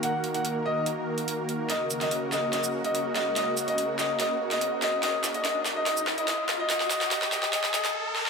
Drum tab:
HH |x-xxx---x--xx-x-|x-xxx---x--xx-x-|x-xxx---x--xx-x-|x-xxx---x--xx-x-|
SH |----------------|--x---x--x------|--x---x---------|--x---x--x------|
SD |----------------|o--o--o-o-----o-|o-----o-o--o--o-|o-o-o-o-o-o-o-o-|

HH |x-xxx---x--x----|
SH |--x---x---x-----|
SD |oooooooooooo--oo|